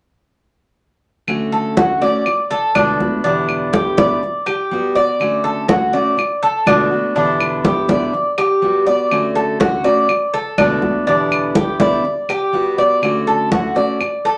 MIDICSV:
0, 0, Header, 1, 5, 480
1, 0, Start_track
1, 0, Key_signature, 2, "major"
1, 0, Tempo, 489396
1, 1254, Time_signature, 4, 2, 24, 8
1, 14100, End_track
2, 0, Start_track
2, 0, Title_t, "Cuban tres"
2, 0, Program_c, 0, 25
2, 1494, Note_on_c, 0, 69, 54
2, 1728, Note_off_c, 0, 69, 0
2, 1735, Note_on_c, 0, 66, 62
2, 1968, Note_off_c, 0, 66, 0
2, 1977, Note_on_c, 0, 74, 65
2, 2443, Note_off_c, 0, 74, 0
2, 2457, Note_on_c, 0, 69, 70
2, 2690, Note_off_c, 0, 69, 0
2, 2698, Note_on_c, 0, 62, 66
2, 3164, Note_off_c, 0, 62, 0
2, 3178, Note_on_c, 0, 62, 60
2, 3644, Note_off_c, 0, 62, 0
2, 3658, Note_on_c, 0, 67, 60
2, 3891, Note_off_c, 0, 67, 0
2, 3898, Note_on_c, 0, 74, 60
2, 4364, Note_off_c, 0, 74, 0
2, 4377, Note_on_c, 0, 67, 59
2, 4844, Note_off_c, 0, 67, 0
2, 4858, Note_on_c, 0, 74, 62
2, 5325, Note_off_c, 0, 74, 0
2, 5335, Note_on_c, 0, 69, 59
2, 5570, Note_off_c, 0, 69, 0
2, 5575, Note_on_c, 0, 66, 67
2, 5810, Note_off_c, 0, 66, 0
2, 5818, Note_on_c, 0, 74, 61
2, 6285, Note_off_c, 0, 74, 0
2, 6302, Note_on_c, 0, 69, 68
2, 6534, Note_off_c, 0, 69, 0
2, 6542, Note_on_c, 0, 62, 67
2, 7006, Note_off_c, 0, 62, 0
2, 7020, Note_on_c, 0, 62, 58
2, 7485, Note_off_c, 0, 62, 0
2, 7501, Note_on_c, 0, 67, 57
2, 7733, Note_off_c, 0, 67, 0
2, 7736, Note_on_c, 0, 74, 64
2, 8203, Note_off_c, 0, 74, 0
2, 8218, Note_on_c, 0, 67, 71
2, 8684, Note_off_c, 0, 67, 0
2, 8694, Note_on_c, 0, 74, 60
2, 9162, Note_off_c, 0, 74, 0
2, 9175, Note_on_c, 0, 69, 66
2, 9409, Note_off_c, 0, 69, 0
2, 9415, Note_on_c, 0, 66, 59
2, 9649, Note_off_c, 0, 66, 0
2, 9654, Note_on_c, 0, 74, 65
2, 10121, Note_off_c, 0, 74, 0
2, 10137, Note_on_c, 0, 69, 68
2, 10370, Note_off_c, 0, 69, 0
2, 10377, Note_on_c, 0, 62, 71
2, 10842, Note_off_c, 0, 62, 0
2, 10858, Note_on_c, 0, 62, 66
2, 11322, Note_off_c, 0, 62, 0
2, 11335, Note_on_c, 0, 67, 54
2, 11568, Note_off_c, 0, 67, 0
2, 11578, Note_on_c, 0, 74, 61
2, 12041, Note_off_c, 0, 74, 0
2, 12061, Note_on_c, 0, 67, 68
2, 12522, Note_off_c, 0, 67, 0
2, 12537, Note_on_c, 0, 74, 58
2, 13000, Note_off_c, 0, 74, 0
2, 13017, Note_on_c, 0, 69, 57
2, 13247, Note_off_c, 0, 69, 0
2, 13257, Note_on_c, 0, 66, 60
2, 13487, Note_off_c, 0, 66, 0
2, 13495, Note_on_c, 0, 74, 57
2, 13958, Note_off_c, 0, 74, 0
2, 13978, Note_on_c, 0, 69, 66
2, 14100, Note_off_c, 0, 69, 0
2, 14100, End_track
3, 0, Start_track
3, 0, Title_t, "Steel-string acoustic guitar"
3, 0, Program_c, 1, 25
3, 1249, Note_on_c, 1, 50, 54
3, 1256, Note_on_c, 1, 57, 66
3, 1262, Note_on_c, 1, 61, 68
3, 1268, Note_on_c, 1, 66, 65
3, 1720, Note_off_c, 1, 50, 0
3, 1726, Note_off_c, 1, 57, 0
3, 1730, Note_off_c, 1, 61, 0
3, 1732, Note_off_c, 1, 66, 0
3, 1732, Note_on_c, 1, 50, 48
3, 1737, Note_on_c, 1, 57, 51
3, 1740, Note_on_c, 1, 61, 52
3, 1748, Note_on_c, 1, 66, 58
3, 1962, Note_off_c, 1, 66, 0
3, 1964, Note_off_c, 1, 50, 0
3, 1967, Note_off_c, 1, 57, 0
3, 1969, Note_off_c, 1, 61, 0
3, 1974, Note_on_c, 1, 66, 66
3, 1982, Note_on_c, 1, 61, 65
3, 1990, Note_on_c, 1, 57, 54
3, 2206, Note_off_c, 1, 66, 0
3, 2210, Note_off_c, 1, 57, 0
3, 2210, Note_off_c, 1, 61, 0
3, 2697, Note_on_c, 1, 47, 70
3, 2703, Note_on_c, 1, 50, 76
3, 2710, Note_on_c, 1, 59, 64
3, 2711, Note_on_c, 1, 57, 80
3, 2719, Note_on_c, 1, 66, 67
3, 2928, Note_off_c, 1, 47, 0
3, 2930, Note_off_c, 1, 66, 0
3, 2931, Note_off_c, 1, 50, 0
3, 2934, Note_off_c, 1, 59, 0
3, 2935, Note_off_c, 1, 57, 0
3, 2942, Note_on_c, 1, 66, 47
3, 2950, Note_on_c, 1, 59, 42
3, 2957, Note_on_c, 1, 57, 37
3, 3170, Note_off_c, 1, 66, 0
3, 3174, Note_off_c, 1, 59, 0
3, 3175, Note_on_c, 1, 40, 57
3, 3178, Note_off_c, 1, 57, 0
3, 3180, Note_on_c, 1, 47, 60
3, 3183, Note_on_c, 1, 50, 60
3, 3188, Note_on_c, 1, 55, 70
3, 3190, Note_on_c, 1, 59, 63
3, 3196, Note_on_c, 1, 64, 68
3, 3644, Note_off_c, 1, 50, 0
3, 3647, Note_off_c, 1, 40, 0
3, 3650, Note_off_c, 1, 47, 0
3, 3654, Note_off_c, 1, 55, 0
3, 3655, Note_off_c, 1, 59, 0
3, 3656, Note_on_c, 1, 50, 52
3, 3658, Note_off_c, 1, 64, 0
3, 3665, Note_on_c, 1, 55, 49
3, 3672, Note_on_c, 1, 59, 47
3, 3673, Note_on_c, 1, 64, 50
3, 3888, Note_off_c, 1, 50, 0
3, 3891, Note_off_c, 1, 64, 0
3, 3892, Note_off_c, 1, 55, 0
3, 3896, Note_off_c, 1, 59, 0
3, 3903, Note_on_c, 1, 64, 64
3, 3907, Note_on_c, 1, 59, 64
3, 3909, Note_on_c, 1, 55, 67
3, 3913, Note_on_c, 1, 50, 56
3, 3920, Note_on_c, 1, 47, 52
3, 4131, Note_off_c, 1, 64, 0
3, 4133, Note_off_c, 1, 59, 0
3, 4134, Note_off_c, 1, 55, 0
3, 4136, Note_off_c, 1, 50, 0
3, 4140, Note_off_c, 1, 47, 0
3, 4623, Note_on_c, 1, 55, 72
3, 4632, Note_on_c, 1, 59, 69
3, 4641, Note_on_c, 1, 66, 71
3, 4851, Note_off_c, 1, 55, 0
3, 4852, Note_off_c, 1, 66, 0
3, 4856, Note_off_c, 1, 59, 0
3, 4863, Note_on_c, 1, 66, 42
3, 4882, Note_on_c, 1, 59, 41
3, 5092, Note_off_c, 1, 66, 0
3, 5098, Note_on_c, 1, 50, 59
3, 5101, Note_off_c, 1, 59, 0
3, 5107, Note_on_c, 1, 57, 67
3, 5111, Note_on_c, 1, 61, 64
3, 5116, Note_on_c, 1, 66, 63
3, 5569, Note_off_c, 1, 50, 0
3, 5574, Note_off_c, 1, 57, 0
3, 5576, Note_off_c, 1, 61, 0
3, 5579, Note_off_c, 1, 66, 0
3, 5580, Note_on_c, 1, 50, 49
3, 5588, Note_on_c, 1, 57, 49
3, 5590, Note_on_c, 1, 61, 49
3, 5596, Note_on_c, 1, 66, 48
3, 5800, Note_off_c, 1, 66, 0
3, 5810, Note_off_c, 1, 50, 0
3, 5811, Note_off_c, 1, 61, 0
3, 5812, Note_on_c, 1, 66, 67
3, 5814, Note_off_c, 1, 57, 0
3, 5823, Note_on_c, 1, 61, 62
3, 5830, Note_on_c, 1, 57, 54
3, 6046, Note_off_c, 1, 66, 0
3, 6047, Note_off_c, 1, 57, 0
3, 6052, Note_off_c, 1, 61, 0
3, 6533, Note_on_c, 1, 47, 75
3, 6542, Note_on_c, 1, 50, 81
3, 6544, Note_on_c, 1, 57, 72
3, 6548, Note_on_c, 1, 59, 81
3, 6551, Note_on_c, 1, 66, 75
3, 6764, Note_off_c, 1, 66, 0
3, 6767, Note_off_c, 1, 47, 0
3, 6771, Note_off_c, 1, 50, 0
3, 6772, Note_off_c, 1, 57, 0
3, 6774, Note_off_c, 1, 59, 0
3, 6776, Note_on_c, 1, 66, 44
3, 6788, Note_on_c, 1, 59, 44
3, 6793, Note_on_c, 1, 57, 41
3, 7008, Note_off_c, 1, 66, 0
3, 7013, Note_on_c, 1, 40, 56
3, 7014, Note_off_c, 1, 59, 0
3, 7017, Note_off_c, 1, 57, 0
3, 7020, Note_on_c, 1, 47, 59
3, 7023, Note_on_c, 1, 50, 67
3, 7027, Note_on_c, 1, 55, 58
3, 7029, Note_on_c, 1, 59, 65
3, 7031, Note_on_c, 1, 64, 64
3, 7482, Note_off_c, 1, 50, 0
3, 7486, Note_off_c, 1, 55, 0
3, 7487, Note_off_c, 1, 40, 0
3, 7489, Note_off_c, 1, 59, 0
3, 7490, Note_off_c, 1, 47, 0
3, 7494, Note_on_c, 1, 50, 51
3, 7496, Note_off_c, 1, 64, 0
3, 7498, Note_on_c, 1, 55, 44
3, 7501, Note_on_c, 1, 59, 49
3, 7510, Note_on_c, 1, 64, 58
3, 7717, Note_off_c, 1, 64, 0
3, 7725, Note_off_c, 1, 59, 0
3, 7727, Note_off_c, 1, 50, 0
3, 7729, Note_off_c, 1, 55, 0
3, 7729, Note_on_c, 1, 64, 68
3, 7737, Note_on_c, 1, 59, 61
3, 7741, Note_on_c, 1, 55, 60
3, 7747, Note_on_c, 1, 50, 62
3, 7750, Note_on_c, 1, 47, 53
3, 7964, Note_off_c, 1, 64, 0
3, 7965, Note_off_c, 1, 55, 0
3, 7969, Note_off_c, 1, 59, 0
3, 7974, Note_off_c, 1, 50, 0
3, 7975, Note_off_c, 1, 47, 0
3, 8454, Note_on_c, 1, 55, 74
3, 8463, Note_on_c, 1, 59, 67
3, 8472, Note_on_c, 1, 66, 69
3, 8681, Note_off_c, 1, 66, 0
3, 8687, Note_off_c, 1, 55, 0
3, 8691, Note_off_c, 1, 59, 0
3, 8693, Note_on_c, 1, 66, 44
3, 8714, Note_on_c, 1, 59, 38
3, 8926, Note_off_c, 1, 66, 0
3, 8936, Note_on_c, 1, 50, 57
3, 8937, Note_off_c, 1, 59, 0
3, 8940, Note_on_c, 1, 57, 60
3, 8946, Note_on_c, 1, 61, 63
3, 8953, Note_on_c, 1, 66, 67
3, 9401, Note_off_c, 1, 50, 0
3, 9409, Note_off_c, 1, 57, 0
3, 9412, Note_off_c, 1, 61, 0
3, 9413, Note_on_c, 1, 50, 48
3, 9416, Note_off_c, 1, 66, 0
3, 9421, Note_on_c, 1, 57, 45
3, 9428, Note_on_c, 1, 61, 46
3, 9434, Note_on_c, 1, 66, 52
3, 9641, Note_off_c, 1, 66, 0
3, 9646, Note_off_c, 1, 50, 0
3, 9650, Note_off_c, 1, 57, 0
3, 9653, Note_off_c, 1, 61, 0
3, 9653, Note_on_c, 1, 66, 76
3, 9664, Note_on_c, 1, 61, 64
3, 9670, Note_on_c, 1, 57, 54
3, 9886, Note_off_c, 1, 66, 0
3, 9887, Note_off_c, 1, 57, 0
3, 9891, Note_off_c, 1, 61, 0
3, 10377, Note_on_c, 1, 47, 65
3, 10381, Note_on_c, 1, 50, 79
3, 10386, Note_on_c, 1, 57, 77
3, 10391, Note_on_c, 1, 59, 74
3, 10395, Note_on_c, 1, 66, 80
3, 10597, Note_off_c, 1, 66, 0
3, 10607, Note_off_c, 1, 47, 0
3, 10609, Note_off_c, 1, 50, 0
3, 10609, Note_off_c, 1, 59, 0
3, 10609, Note_on_c, 1, 66, 42
3, 10611, Note_off_c, 1, 57, 0
3, 10621, Note_on_c, 1, 59, 45
3, 10631, Note_on_c, 1, 57, 37
3, 10843, Note_off_c, 1, 66, 0
3, 10849, Note_off_c, 1, 59, 0
3, 10853, Note_on_c, 1, 40, 61
3, 10854, Note_off_c, 1, 57, 0
3, 10860, Note_on_c, 1, 47, 68
3, 10862, Note_on_c, 1, 50, 66
3, 10866, Note_on_c, 1, 55, 64
3, 10869, Note_on_c, 1, 59, 64
3, 10872, Note_on_c, 1, 64, 63
3, 11321, Note_off_c, 1, 50, 0
3, 11324, Note_off_c, 1, 40, 0
3, 11325, Note_off_c, 1, 55, 0
3, 11328, Note_off_c, 1, 47, 0
3, 11332, Note_off_c, 1, 59, 0
3, 11332, Note_on_c, 1, 50, 45
3, 11334, Note_off_c, 1, 64, 0
3, 11337, Note_on_c, 1, 55, 42
3, 11343, Note_on_c, 1, 59, 52
3, 11351, Note_on_c, 1, 64, 50
3, 11555, Note_off_c, 1, 64, 0
3, 11563, Note_off_c, 1, 59, 0
3, 11564, Note_off_c, 1, 50, 0
3, 11566, Note_off_c, 1, 55, 0
3, 11567, Note_on_c, 1, 64, 69
3, 11575, Note_on_c, 1, 59, 64
3, 11577, Note_on_c, 1, 55, 59
3, 11581, Note_on_c, 1, 50, 60
3, 11586, Note_on_c, 1, 47, 56
3, 11797, Note_off_c, 1, 55, 0
3, 11801, Note_off_c, 1, 64, 0
3, 11802, Note_off_c, 1, 59, 0
3, 11808, Note_off_c, 1, 50, 0
3, 11810, Note_off_c, 1, 47, 0
3, 12286, Note_on_c, 1, 55, 67
3, 12295, Note_on_c, 1, 59, 75
3, 12301, Note_on_c, 1, 66, 76
3, 12515, Note_off_c, 1, 66, 0
3, 12520, Note_off_c, 1, 55, 0
3, 12524, Note_off_c, 1, 59, 0
3, 12527, Note_on_c, 1, 66, 47
3, 12547, Note_on_c, 1, 59, 37
3, 12760, Note_off_c, 1, 66, 0
3, 12770, Note_off_c, 1, 59, 0
3, 12770, Note_on_c, 1, 50, 63
3, 12778, Note_on_c, 1, 57, 66
3, 12786, Note_on_c, 1, 61, 61
3, 12792, Note_on_c, 1, 66, 74
3, 13241, Note_off_c, 1, 50, 0
3, 13245, Note_off_c, 1, 57, 0
3, 13249, Note_off_c, 1, 61, 0
3, 13252, Note_off_c, 1, 66, 0
3, 13253, Note_on_c, 1, 50, 43
3, 13261, Note_on_c, 1, 57, 50
3, 13267, Note_on_c, 1, 61, 54
3, 13270, Note_on_c, 1, 66, 53
3, 13474, Note_off_c, 1, 66, 0
3, 13482, Note_off_c, 1, 50, 0
3, 13486, Note_off_c, 1, 61, 0
3, 13486, Note_on_c, 1, 66, 69
3, 13487, Note_off_c, 1, 57, 0
3, 13498, Note_on_c, 1, 61, 61
3, 13506, Note_on_c, 1, 57, 55
3, 13719, Note_off_c, 1, 66, 0
3, 13725, Note_off_c, 1, 61, 0
3, 13729, Note_off_c, 1, 57, 0
3, 14100, End_track
4, 0, Start_track
4, 0, Title_t, "Muted steel-string acoustic guitar strokes"
4, 2219, Note_on_c, 9, 29, 52
4, 2317, Note_off_c, 9, 29, 0
4, 4145, Note_on_c, 9, 29, 55
4, 4243, Note_off_c, 9, 29, 0
4, 6053, Note_on_c, 9, 29, 51
4, 6151, Note_off_c, 9, 29, 0
4, 7977, Note_on_c, 9, 29, 54
4, 8075, Note_off_c, 9, 29, 0
4, 9894, Note_on_c, 9, 29, 61
4, 9992, Note_off_c, 9, 29, 0
4, 11809, Note_on_c, 9, 29, 54
4, 11907, Note_off_c, 9, 29, 0
4, 13739, Note_on_c, 9, 29, 55
4, 13837, Note_off_c, 9, 29, 0
4, 14100, End_track
5, 0, Start_track
5, 0, Title_t, "Drums"
5, 1254, Note_on_c, 9, 75, 53
5, 1257, Note_on_c, 9, 63, 31
5, 1353, Note_off_c, 9, 75, 0
5, 1355, Note_off_c, 9, 63, 0
5, 1501, Note_on_c, 9, 63, 33
5, 1599, Note_off_c, 9, 63, 0
5, 1738, Note_on_c, 9, 63, 88
5, 1836, Note_off_c, 9, 63, 0
5, 1986, Note_on_c, 9, 63, 33
5, 2084, Note_off_c, 9, 63, 0
5, 2216, Note_on_c, 9, 75, 57
5, 2226, Note_on_c, 9, 63, 26
5, 2314, Note_off_c, 9, 75, 0
5, 2324, Note_off_c, 9, 63, 0
5, 2465, Note_on_c, 9, 63, 34
5, 2563, Note_off_c, 9, 63, 0
5, 2700, Note_on_c, 9, 75, 66
5, 2704, Note_on_c, 9, 63, 77
5, 2798, Note_off_c, 9, 75, 0
5, 2802, Note_off_c, 9, 63, 0
5, 2946, Note_on_c, 9, 63, 66
5, 3044, Note_off_c, 9, 63, 0
5, 3183, Note_on_c, 9, 63, 31
5, 3281, Note_off_c, 9, 63, 0
5, 3420, Note_on_c, 9, 75, 53
5, 3426, Note_on_c, 9, 63, 33
5, 3518, Note_off_c, 9, 75, 0
5, 3524, Note_off_c, 9, 63, 0
5, 3664, Note_on_c, 9, 63, 88
5, 3762, Note_off_c, 9, 63, 0
5, 3904, Note_on_c, 9, 63, 95
5, 4002, Note_off_c, 9, 63, 0
5, 4148, Note_on_c, 9, 63, 31
5, 4246, Note_off_c, 9, 63, 0
5, 4383, Note_on_c, 9, 75, 52
5, 4386, Note_on_c, 9, 63, 36
5, 4481, Note_off_c, 9, 75, 0
5, 4484, Note_off_c, 9, 63, 0
5, 4624, Note_on_c, 9, 63, 35
5, 4723, Note_off_c, 9, 63, 0
5, 4864, Note_on_c, 9, 63, 30
5, 4962, Note_off_c, 9, 63, 0
5, 5101, Note_on_c, 9, 63, 30
5, 5108, Note_on_c, 9, 75, 54
5, 5199, Note_off_c, 9, 63, 0
5, 5206, Note_off_c, 9, 75, 0
5, 5343, Note_on_c, 9, 63, 35
5, 5441, Note_off_c, 9, 63, 0
5, 5581, Note_on_c, 9, 63, 93
5, 5679, Note_off_c, 9, 63, 0
5, 5825, Note_on_c, 9, 63, 31
5, 5923, Note_off_c, 9, 63, 0
5, 6065, Note_on_c, 9, 63, 30
5, 6068, Note_on_c, 9, 75, 58
5, 6163, Note_off_c, 9, 63, 0
5, 6166, Note_off_c, 9, 75, 0
5, 6304, Note_on_c, 9, 63, 36
5, 6402, Note_off_c, 9, 63, 0
5, 6539, Note_on_c, 9, 63, 79
5, 6543, Note_on_c, 9, 75, 64
5, 6637, Note_off_c, 9, 63, 0
5, 6641, Note_off_c, 9, 75, 0
5, 7026, Note_on_c, 9, 63, 31
5, 7124, Note_off_c, 9, 63, 0
5, 7263, Note_on_c, 9, 75, 59
5, 7264, Note_on_c, 9, 63, 33
5, 7361, Note_off_c, 9, 75, 0
5, 7363, Note_off_c, 9, 63, 0
5, 7499, Note_on_c, 9, 63, 91
5, 7598, Note_off_c, 9, 63, 0
5, 7739, Note_on_c, 9, 63, 86
5, 7838, Note_off_c, 9, 63, 0
5, 7987, Note_on_c, 9, 63, 27
5, 8085, Note_off_c, 9, 63, 0
5, 8218, Note_on_c, 9, 75, 50
5, 8220, Note_on_c, 9, 63, 33
5, 8316, Note_off_c, 9, 75, 0
5, 8318, Note_off_c, 9, 63, 0
5, 8461, Note_on_c, 9, 63, 34
5, 8559, Note_off_c, 9, 63, 0
5, 8705, Note_on_c, 9, 63, 31
5, 8803, Note_off_c, 9, 63, 0
5, 8940, Note_on_c, 9, 75, 55
5, 8941, Note_on_c, 9, 63, 34
5, 9038, Note_off_c, 9, 75, 0
5, 9039, Note_off_c, 9, 63, 0
5, 9180, Note_on_c, 9, 63, 35
5, 9278, Note_off_c, 9, 63, 0
5, 9422, Note_on_c, 9, 63, 94
5, 9520, Note_off_c, 9, 63, 0
5, 9659, Note_on_c, 9, 63, 30
5, 9757, Note_off_c, 9, 63, 0
5, 9896, Note_on_c, 9, 75, 56
5, 9899, Note_on_c, 9, 63, 28
5, 9995, Note_off_c, 9, 75, 0
5, 9997, Note_off_c, 9, 63, 0
5, 10139, Note_on_c, 9, 63, 38
5, 10237, Note_off_c, 9, 63, 0
5, 10376, Note_on_c, 9, 63, 76
5, 10380, Note_on_c, 9, 75, 63
5, 10474, Note_off_c, 9, 63, 0
5, 10478, Note_off_c, 9, 75, 0
5, 10614, Note_on_c, 9, 63, 61
5, 10712, Note_off_c, 9, 63, 0
5, 10855, Note_on_c, 9, 63, 30
5, 10953, Note_off_c, 9, 63, 0
5, 11095, Note_on_c, 9, 63, 31
5, 11102, Note_on_c, 9, 75, 63
5, 11193, Note_off_c, 9, 63, 0
5, 11200, Note_off_c, 9, 75, 0
5, 11332, Note_on_c, 9, 63, 88
5, 11430, Note_off_c, 9, 63, 0
5, 11571, Note_on_c, 9, 63, 88
5, 11669, Note_off_c, 9, 63, 0
5, 11816, Note_on_c, 9, 63, 31
5, 11914, Note_off_c, 9, 63, 0
5, 12053, Note_on_c, 9, 63, 39
5, 12055, Note_on_c, 9, 75, 58
5, 12151, Note_off_c, 9, 63, 0
5, 12153, Note_off_c, 9, 75, 0
5, 12295, Note_on_c, 9, 63, 29
5, 12393, Note_off_c, 9, 63, 0
5, 12535, Note_on_c, 9, 63, 32
5, 12633, Note_off_c, 9, 63, 0
5, 12777, Note_on_c, 9, 63, 30
5, 12779, Note_on_c, 9, 75, 54
5, 12875, Note_off_c, 9, 63, 0
5, 12877, Note_off_c, 9, 75, 0
5, 13018, Note_on_c, 9, 63, 33
5, 13116, Note_off_c, 9, 63, 0
5, 13257, Note_on_c, 9, 63, 93
5, 13355, Note_off_c, 9, 63, 0
5, 13498, Note_on_c, 9, 63, 36
5, 13597, Note_off_c, 9, 63, 0
5, 13735, Note_on_c, 9, 63, 29
5, 13737, Note_on_c, 9, 75, 52
5, 13833, Note_off_c, 9, 63, 0
5, 13835, Note_off_c, 9, 75, 0
5, 13975, Note_on_c, 9, 63, 37
5, 14073, Note_off_c, 9, 63, 0
5, 14100, End_track
0, 0, End_of_file